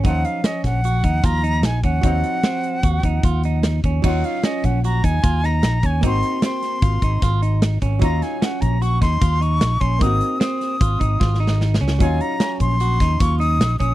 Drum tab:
CC |------------------------------|------------------------------|x-----------------------------|------------------------------|
HH |x--x--x--x--x--x--x--x--x--x--|x--x--x--x--x--x--x--x--x--x--|---x--x--x--x--x--x--x--x--x--|x--x--x--x--x--x--x--x--x--x--|
SD |------o--o--------o-----o-----|------o-----------------o-----|------o--------------o--o-----|------o--o--------o-----o-----|
BD |o--------o-----o--o--------o--|o-----------o--o--o--------o--|o--------o-----o--o--------o--|o-----------o--o--o--------o--|

CC |------------------------------|------------------------------|------------------------------|
HH |x--x--x--x--x--x--x--x--x--x--|x--x--x--x--x--x--------------|x--x--x--x--x--x--x--x--x--x--|
SD |---o--o--------o--------o-----|------o--o--------o-o-o-o-o-o-|------o--------o--------o-----|
BD |o--------o-----o--o--------o--|o-----------o--o--o-----------|o--------o-----o--o--------o--|